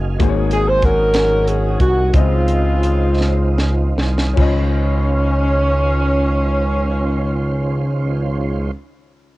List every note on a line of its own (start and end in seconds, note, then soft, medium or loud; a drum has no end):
0.00 0.18 F#1 medium
0.00 0.22 D#3 medium
0.00 0.17 F#3 soft
0.00 0.19 F#3 medium
0.00 0.16 C#4 medium
0.00 4.34 D#4 medium
0.00 0.17 G#4 soft
0.00 2.11 G#4 medium
0.00 0.18 F5 medium
0.00 0.19 F5 medium
0.19 1.76 G#1 loud
0.19 1.11 G#2 medium
0.19 2.12 F#3 medium
0.19 2.09 A#3 medium
0.19 2.12 A#3 medium
0.19 2.10 F#4 medium
0.19 2.11 G#4 medium
0.19 0.28 C5 medium
0.19 kick loud
0.19 closed hi-hat medium
0.29 2.15 C#5 medium
0.51 0.67 G#4 medium
0.51 closed hi-hat soft
0.69 0.84 C5 medium
0.82 1.78 C#4 medium
0.82 1.78 F#4 medium
0.82 1.48 A#4 loud
0.82 kick medium
0.82 closed hi-hat soft
1.14 snare medium
1.14 closed hi-hat medium
1.48 1.81 G#4 medium
1.48 closed hi-hat soft
1.80 2.11 C2 medium
1.80 2.12 F#4 medium
1.80 kick medium
1.80 closed hi-hat soft
2.13 3.93 C#2 loud
2.13 3.17 C#3 soft
2.13 4.35 D#3 medium
2.13 3.94 G#3 medium
2.13 4.33 C4 medium
2.13 4.35 C4 medium
2.13 3.94 C4 medium
2.13 2.21 E4 soft
2.13 4.35 F4 medium
2.13 3.97 F4 medium
2.13 4.34 C5 medium
2.13 4.35 D#5 medium
2.13 kick medium
2.13 closed hi-hat medium
2.20 4.34 F4 medium
2.48 closed hi-hat soft
2.83 closed hi-hat soft
3.21 snare soft
3.58 snare medium
3.97 4.34 C2 medium
3.97 snare medium
4.18 snare medium
4.34 8.69 C#2 medium
4.34 8.70 C#2 medium
4.34 8.66 C#4 medium
4.34 8.68 F4 medium
4.34 kick medium
4.34 crash medium
4.38 8.72 D#3 medium
4.38 8.72 C#4 medium
4.38 8.71 F4 medium
4.38 8.71 C5 medium
4.38 8.73 D#5 medium